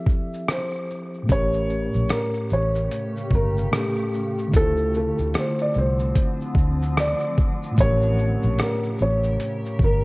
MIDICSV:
0, 0, Header, 1, 6, 480
1, 0, Start_track
1, 0, Tempo, 810811
1, 765, Time_signature, 4, 2, 24, 8
1, 5945, End_track
2, 0, Start_track
2, 0, Title_t, "Felt piano"
2, 0, Program_c, 0, 0
2, 0, Note_on_c, 0, 76, 77
2, 268, Note_off_c, 0, 76, 0
2, 300, Note_on_c, 0, 72, 80
2, 510, Note_off_c, 0, 72, 0
2, 780, Note_on_c, 0, 73, 109
2, 1229, Note_off_c, 0, 73, 0
2, 1257, Note_on_c, 0, 70, 69
2, 1468, Note_off_c, 0, 70, 0
2, 1500, Note_on_c, 0, 73, 80
2, 1949, Note_off_c, 0, 73, 0
2, 1981, Note_on_c, 0, 70, 80
2, 2333, Note_off_c, 0, 70, 0
2, 2700, Note_on_c, 0, 69, 120
2, 2910, Note_off_c, 0, 69, 0
2, 2940, Note_on_c, 0, 69, 74
2, 3149, Note_off_c, 0, 69, 0
2, 3182, Note_on_c, 0, 72, 83
2, 3303, Note_off_c, 0, 72, 0
2, 3326, Note_on_c, 0, 74, 72
2, 3406, Note_off_c, 0, 74, 0
2, 3423, Note_on_c, 0, 72, 77
2, 4111, Note_off_c, 0, 72, 0
2, 4144, Note_on_c, 0, 74, 85
2, 4352, Note_off_c, 0, 74, 0
2, 4620, Note_on_c, 0, 73, 116
2, 5069, Note_off_c, 0, 73, 0
2, 5101, Note_on_c, 0, 70, 67
2, 5310, Note_off_c, 0, 70, 0
2, 5341, Note_on_c, 0, 73, 78
2, 5790, Note_off_c, 0, 73, 0
2, 5826, Note_on_c, 0, 70, 79
2, 5945, Note_off_c, 0, 70, 0
2, 5945, End_track
3, 0, Start_track
3, 0, Title_t, "Tine electric piano"
3, 0, Program_c, 1, 4
3, 0, Control_c, 1, 64, 127
3, 0, Note_on_c, 1, 53, 58
3, 0, Note_on_c, 1, 60, 57
3, 0, Note_on_c, 1, 64, 56
3, 0, Note_on_c, 1, 67, 56
3, 0, Note_on_c, 1, 69, 68
3, 725, Note_off_c, 1, 53, 0
3, 728, Note_on_c, 1, 45, 59
3, 734, Note_off_c, 1, 60, 0
3, 745, Note_off_c, 1, 64, 0
3, 746, Note_on_c, 1, 57, 52
3, 754, Note_off_c, 1, 67, 0
3, 764, Note_off_c, 1, 69, 0
3, 766, Note_on_c, 1, 61, 57
3, 773, Control_c, 1, 64, 0
3, 787, Note_on_c, 1, 67, 60
3, 807, Note_on_c, 1, 70, 69
3, 869, Control_c, 1, 64, 127
3, 2163, Note_off_c, 1, 45, 0
3, 2172, Note_off_c, 1, 57, 0
3, 2182, Note_off_c, 1, 61, 0
3, 2189, Note_on_c, 1, 45, 50
3, 2193, Note_off_c, 1, 67, 0
3, 2198, Note_on_c, 1, 57, 47
3, 2202, Note_off_c, 1, 70, 0
3, 2208, Note_on_c, 1, 61, 43
3, 2219, Note_on_c, 1, 67, 43
3, 2228, Note_on_c, 1, 69, 51
3, 2649, Note_on_c, 1, 50, 62
3, 2662, Note_off_c, 1, 57, 0
3, 2669, Note_on_c, 1, 57, 53
3, 2677, Note_off_c, 1, 45, 0
3, 2687, Note_off_c, 1, 61, 0
3, 2689, Note_on_c, 1, 64, 58
3, 2692, Note_off_c, 1, 67, 0
3, 2693, Control_c, 1, 64, 0
3, 2697, Note_off_c, 1, 69, 0
3, 2709, Note_on_c, 1, 65, 51
3, 2728, Note_on_c, 1, 72, 75
3, 2800, Control_c, 1, 64, 127
3, 4564, Note_off_c, 1, 50, 0
3, 4567, Note_on_c, 1, 45, 64
3, 4574, Note_off_c, 1, 57, 0
3, 4584, Note_off_c, 1, 64, 0
3, 4586, Note_on_c, 1, 57, 61
3, 4594, Note_off_c, 1, 65, 0
3, 4603, Note_off_c, 1, 72, 0
3, 4606, Note_on_c, 1, 61, 62
3, 4614, Control_c, 1, 64, 0
3, 4626, Note_on_c, 1, 67, 59
3, 4646, Note_on_c, 1, 70, 72
3, 4723, Control_c, 1, 64, 127
3, 5945, Note_off_c, 1, 45, 0
3, 5945, Note_off_c, 1, 57, 0
3, 5945, Note_off_c, 1, 61, 0
3, 5945, Note_off_c, 1, 67, 0
3, 5945, Note_off_c, 1, 70, 0
3, 5945, End_track
4, 0, Start_track
4, 0, Title_t, "Ambient pad"
4, 0, Program_c, 2, 92
4, 765, Note_on_c, 2, 67, 89
4, 766, Note_on_c, 2, 49, 80
4, 767, Note_on_c, 2, 57, 76
4, 2666, Note_off_c, 2, 49, 0
4, 2666, Note_off_c, 2, 67, 0
4, 2667, Note_off_c, 2, 57, 0
4, 2681, Note_on_c, 2, 60, 74
4, 2682, Note_on_c, 2, 50, 80
4, 2682, Note_on_c, 2, 53, 89
4, 4584, Note_off_c, 2, 60, 0
4, 4585, Note_off_c, 2, 50, 0
4, 4585, Note_off_c, 2, 53, 0
4, 4604, Note_on_c, 2, 70, 70
4, 4605, Note_on_c, 2, 49, 77
4, 4605, Note_on_c, 2, 67, 83
4, 5945, Note_off_c, 2, 49, 0
4, 5945, Note_off_c, 2, 67, 0
4, 5945, Note_off_c, 2, 70, 0
4, 5945, End_track
5, 0, Start_track
5, 0, Title_t, "Fingered electric bass"
5, 0, Program_c, 3, 33
5, 767, Note_on_c, 3, 33, 111
5, 1105, Note_off_c, 3, 33, 0
5, 1153, Note_on_c, 3, 34, 87
5, 1238, Note_off_c, 3, 34, 0
5, 1492, Note_on_c, 3, 33, 106
5, 1702, Note_off_c, 3, 33, 0
5, 1959, Note_on_c, 3, 31, 92
5, 2175, Note_off_c, 3, 31, 0
5, 2687, Note_on_c, 3, 38, 111
5, 3025, Note_off_c, 3, 38, 0
5, 3073, Note_on_c, 3, 38, 89
5, 3158, Note_off_c, 3, 38, 0
5, 3411, Note_on_c, 3, 36, 99
5, 3622, Note_off_c, 3, 36, 0
5, 3880, Note_on_c, 3, 38, 100
5, 4222, Note_off_c, 3, 38, 0
5, 4608, Note_on_c, 3, 33, 125
5, 4946, Note_off_c, 3, 33, 0
5, 4996, Note_on_c, 3, 34, 88
5, 5079, Note_off_c, 3, 34, 0
5, 5333, Note_on_c, 3, 33, 112
5, 5543, Note_off_c, 3, 33, 0
5, 5800, Note_on_c, 3, 31, 89
5, 5945, Note_off_c, 3, 31, 0
5, 5945, End_track
6, 0, Start_track
6, 0, Title_t, "Drums"
6, 37, Note_on_c, 9, 36, 82
6, 48, Note_on_c, 9, 82, 42
6, 52, Note_off_c, 9, 82, 0
6, 52, Note_on_c, 9, 82, 43
6, 96, Note_off_c, 9, 36, 0
6, 111, Note_off_c, 9, 82, 0
6, 196, Note_on_c, 9, 82, 49
6, 200, Note_off_c, 9, 82, 0
6, 200, Note_on_c, 9, 82, 47
6, 260, Note_off_c, 9, 82, 0
6, 286, Note_on_c, 9, 37, 112
6, 294, Note_on_c, 9, 82, 69
6, 296, Note_off_c, 9, 82, 0
6, 296, Note_on_c, 9, 42, 64
6, 296, Note_on_c, 9, 82, 62
6, 346, Note_off_c, 9, 37, 0
6, 356, Note_off_c, 9, 42, 0
6, 356, Note_off_c, 9, 82, 0
6, 419, Note_on_c, 9, 82, 41
6, 439, Note_off_c, 9, 82, 0
6, 439, Note_on_c, 9, 82, 47
6, 498, Note_off_c, 9, 82, 0
6, 535, Note_on_c, 9, 82, 43
6, 594, Note_off_c, 9, 82, 0
6, 676, Note_on_c, 9, 82, 45
6, 736, Note_off_c, 9, 82, 0
6, 760, Note_on_c, 9, 82, 78
6, 764, Note_on_c, 9, 36, 109
6, 768, Note_off_c, 9, 82, 0
6, 768, Note_on_c, 9, 42, 74
6, 768, Note_on_c, 9, 82, 74
6, 824, Note_off_c, 9, 36, 0
6, 827, Note_off_c, 9, 42, 0
6, 827, Note_off_c, 9, 82, 0
6, 903, Note_on_c, 9, 82, 53
6, 910, Note_off_c, 9, 82, 0
6, 910, Note_on_c, 9, 82, 44
6, 969, Note_off_c, 9, 82, 0
6, 1004, Note_on_c, 9, 82, 48
6, 1005, Note_off_c, 9, 82, 0
6, 1005, Note_on_c, 9, 82, 48
6, 1064, Note_off_c, 9, 82, 0
6, 1146, Note_on_c, 9, 82, 45
6, 1150, Note_off_c, 9, 82, 0
6, 1150, Note_on_c, 9, 82, 52
6, 1210, Note_off_c, 9, 82, 0
6, 1240, Note_on_c, 9, 42, 67
6, 1240, Note_on_c, 9, 82, 65
6, 1242, Note_off_c, 9, 82, 0
6, 1242, Note_on_c, 9, 82, 66
6, 1246, Note_on_c, 9, 37, 124
6, 1299, Note_off_c, 9, 42, 0
6, 1301, Note_off_c, 9, 82, 0
6, 1305, Note_off_c, 9, 37, 0
6, 1387, Note_on_c, 9, 82, 45
6, 1393, Note_off_c, 9, 82, 0
6, 1393, Note_on_c, 9, 82, 45
6, 1453, Note_off_c, 9, 82, 0
6, 1478, Note_on_c, 9, 82, 47
6, 1486, Note_off_c, 9, 82, 0
6, 1486, Note_on_c, 9, 82, 50
6, 1545, Note_off_c, 9, 82, 0
6, 1628, Note_on_c, 9, 82, 50
6, 1629, Note_off_c, 9, 82, 0
6, 1629, Note_on_c, 9, 82, 53
6, 1689, Note_off_c, 9, 82, 0
6, 1725, Note_on_c, 9, 42, 67
6, 1725, Note_on_c, 9, 82, 72
6, 1729, Note_off_c, 9, 82, 0
6, 1729, Note_on_c, 9, 82, 64
6, 1784, Note_off_c, 9, 42, 0
6, 1788, Note_off_c, 9, 82, 0
6, 1871, Note_on_c, 9, 82, 45
6, 1878, Note_off_c, 9, 82, 0
6, 1878, Note_on_c, 9, 82, 46
6, 1937, Note_off_c, 9, 82, 0
6, 1957, Note_on_c, 9, 36, 81
6, 1971, Note_on_c, 9, 82, 48
6, 2016, Note_off_c, 9, 36, 0
6, 2030, Note_off_c, 9, 82, 0
6, 2112, Note_on_c, 9, 82, 54
6, 2119, Note_off_c, 9, 82, 0
6, 2119, Note_on_c, 9, 82, 50
6, 2179, Note_off_c, 9, 82, 0
6, 2207, Note_on_c, 9, 37, 118
6, 2210, Note_on_c, 9, 82, 79
6, 2217, Note_off_c, 9, 82, 0
6, 2217, Note_on_c, 9, 42, 68
6, 2217, Note_on_c, 9, 82, 64
6, 2266, Note_off_c, 9, 37, 0
6, 2276, Note_off_c, 9, 42, 0
6, 2276, Note_off_c, 9, 82, 0
6, 2339, Note_on_c, 9, 82, 46
6, 2355, Note_off_c, 9, 82, 0
6, 2355, Note_on_c, 9, 82, 45
6, 2414, Note_off_c, 9, 82, 0
6, 2445, Note_on_c, 9, 82, 49
6, 2453, Note_off_c, 9, 82, 0
6, 2453, Note_on_c, 9, 82, 43
6, 2513, Note_off_c, 9, 82, 0
6, 2594, Note_on_c, 9, 82, 47
6, 2596, Note_off_c, 9, 82, 0
6, 2596, Note_on_c, 9, 82, 48
6, 2655, Note_off_c, 9, 82, 0
6, 2678, Note_on_c, 9, 82, 76
6, 2684, Note_on_c, 9, 36, 107
6, 2686, Note_off_c, 9, 82, 0
6, 2686, Note_on_c, 9, 42, 74
6, 2686, Note_on_c, 9, 82, 75
6, 2743, Note_off_c, 9, 36, 0
6, 2746, Note_off_c, 9, 42, 0
6, 2746, Note_off_c, 9, 82, 0
6, 2821, Note_on_c, 9, 82, 58
6, 2828, Note_off_c, 9, 82, 0
6, 2828, Note_on_c, 9, 82, 41
6, 2887, Note_off_c, 9, 82, 0
6, 2924, Note_on_c, 9, 82, 48
6, 2925, Note_off_c, 9, 82, 0
6, 2925, Note_on_c, 9, 82, 49
6, 2984, Note_off_c, 9, 82, 0
6, 3067, Note_on_c, 9, 82, 46
6, 3073, Note_off_c, 9, 82, 0
6, 3073, Note_on_c, 9, 82, 47
6, 3132, Note_off_c, 9, 82, 0
6, 3161, Note_on_c, 9, 42, 68
6, 3161, Note_on_c, 9, 82, 70
6, 3166, Note_off_c, 9, 82, 0
6, 3166, Note_on_c, 9, 82, 59
6, 3167, Note_on_c, 9, 37, 108
6, 3220, Note_off_c, 9, 42, 0
6, 3225, Note_off_c, 9, 82, 0
6, 3226, Note_off_c, 9, 37, 0
6, 3307, Note_on_c, 9, 82, 48
6, 3316, Note_off_c, 9, 82, 0
6, 3316, Note_on_c, 9, 82, 42
6, 3375, Note_off_c, 9, 82, 0
6, 3399, Note_on_c, 9, 82, 45
6, 3407, Note_off_c, 9, 82, 0
6, 3407, Note_on_c, 9, 82, 47
6, 3467, Note_off_c, 9, 82, 0
6, 3549, Note_on_c, 9, 82, 49
6, 3550, Note_off_c, 9, 82, 0
6, 3550, Note_on_c, 9, 82, 57
6, 3609, Note_off_c, 9, 82, 0
6, 3645, Note_on_c, 9, 36, 92
6, 3645, Note_on_c, 9, 42, 67
6, 3645, Note_on_c, 9, 82, 63
6, 3651, Note_off_c, 9, 82, 0
6, 3651, Note_on_c, 9, 82, 64
6, 3704, Note_off_c, 9, 36, 0
6, 3705, Note_off_c, 9, 42, 0
6, 3710, Note_off_c, 9, 82, 0
6, 3791, Note_on_c, 9, 82, 47
6, 3799, Note_off_c, 9, 82, 0
6, 3799, Note_on_c, 9, 82, 42
6, 3858, Note_off_c, 9, 82, 0
6, 3877, Note_on_c, 9, 36, 89
6, 3893, Note_on_c, 9, 82, 44
6, 3936, Note_off_c, 9, 36, 0
6, 3952, Note_off_c, 9, 82, 0
6, 4033, Note_on_c, 9, 82, 52
6, 4041, Note_off_c, 9, 82, 0
6, 4041, Note_on_c, 9, 82, 54
6, 4100, Note_off_c, 9, 82, 0
6, 4128, Note_on_c, 9, 37, 127
6, 4130, Note_on_c, 9, 82, 75
6, 4138, Note_off_c, 9, 82, 0
6, 4138, Note_on_c, 9, 42, 66
6, 4138, Note_on_c, 9, 82, 68
6, 4187, Note_off_c, 9, 37, 0
6, 4197, Note_off_c, 9, 42, 0
6, 4197, Note_off_c, 9, 82, 0
6, 4261, Note_on_c, 9, 82, 43
6, 4275, Note_off_c, 9, 82, 0
6, 4275, Note_on_c, 9, 82, 47
6, 4335, Note_off_c, 9, 82, 0
6, 4365, Note_on_c, 9, 82, 54
6, 4368, Note_on_c, 9, 36, 93
6, 4377, Note_off_c, 9, 82, 0
6, 4377, Note_on_c, 9, 82, 48
6, 4427, Note_off_c, 9, 36, 0
6, 4436, Note_off_c, 9, 82, 0
6, 4514, Note_on_c, 9, 82, 47
6, 4519, Note_off_c, 9, 82, 0
6, 4519, Note_on_c, 9, 82, 43
6, 4578, Note_off_c, 9, 82, 0
6, 4598, Note_on_c, 9, 82, 84
6, 4605, Note_on_c, 9, 36, 114
6, 4609, Note_off_c, 9, 82, 0
6, 4609, Note_on_c, 9, 42, 74
6, 4609, Note_on_c, 9, 82, 84
6, 4664, Note_off_c, 9, 36, 0
6, 4669, Note_off_c, 9, 42, 0
6, 4669, Note_off_c, 9, 82, 0
6, 4742, Note_on_c, 9, 82, 52
6, 4750, Note_off_c, 9, 82, 0
6, 4750, Note_on_c, 9, 82, 42
6, 4810, Note_off_c, 9, 82, 0
6, 4844, Note_on_c, 9, 82, 47
6, 4845, Note_off_c, 9, 82, 0
6, 4845, Note_on_c, 9, 82, 51
6, 4904, Note_off_c, 9, 82, 0
6, 4987, Note_on_c, 9, 82, 44
6, 4993, Note_off_c, 9, 82, 0
6, 4993, Note_on_c, 9, 82, 47
6, 5052, Note_off_c, 9, 82, 0
6, 5082, Note_on_c, 9, 42, 64
6, 5082, Note_on_c, 9, 82, 69
6, 5084, Note_off_c, 9, 82, 0
6, 5084, Note_on_c, 9, 82, 68
6, 5088, Note_on_c, 9, 37, 116
6, 5141, Note_off_c, 9, 42, 0
6, 5143, Note_off_c, 9, 82, 0
6, 5147, Note_off_c, 9, 37, 0
6, 5228, Note_on_c, 9, 82, 47
6, 5235, Note_off_c, 9, 82, 0
6, 5235, Note_on_c, 9, 82, 47
6, 5295, Note_off_c, 9, 82, 0
6, 5319, Note_on_c, 9, 82, 43
6, 5327, Note_off_c, 9, 82, 0
6, 5327, Note_on_c, 9, 82, 52
6, 5386, Note_off_c, 9, 82, 0
6, 5469, Note_on_c, 9, 82, 58
6, 5470, Note_off_c, 9, 82, 0
6, 5470, Note_on_c, 9, 82, 57
6, 5529, Note_off_c, 9, 82, 0
6, 5565, Note_on_c, 9, 42, 66
6, 5565, Note_on_c, 9, 82, 70
6, 5570, Note_off_c, 9, 82, 0
6, 5570, Note_on_c, 9, 82, 68
6, 5624, Note_off_c, 9, 42, 0
6, 5629, Note_off_c, 9, 82, 0
6, 5710, Note_on_c, 9, 82, 48
6, 5718, Note_off_c, 9, 82, 0
6, 5718, Note_on_c, 9, 82, 45
6, 5778, Note_off_c, 9, 82, 0
6, 5797, Note_on_c, 9, 36, 89
6, 5811, Note_on_c, 9, 82, 42
6, 5856, Note_off_c, 9, 36, 0
6, 5871, Note_off_c, 9, 82, 0
6, 5945, End_track
0, 0, End_of_file